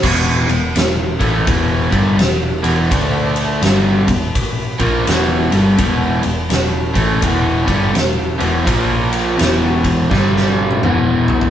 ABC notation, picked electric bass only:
X:1
M:4/4
L:1/8
Q:"Swing" 1/4=83
K:Em
V:1 name="Picked electric bass" clef=bass
E,,, E,,, E,,, A,,, E,,, G,,, E,,, E,,, | D,,2 G,,, E,,, z ^A,,, E,,, G,,, | E,,, E,,, E,,, A,,, E,,, G,,, E,,, E,,, | ^A,,,2 E,,,2 G,,,2 E,,,2 |]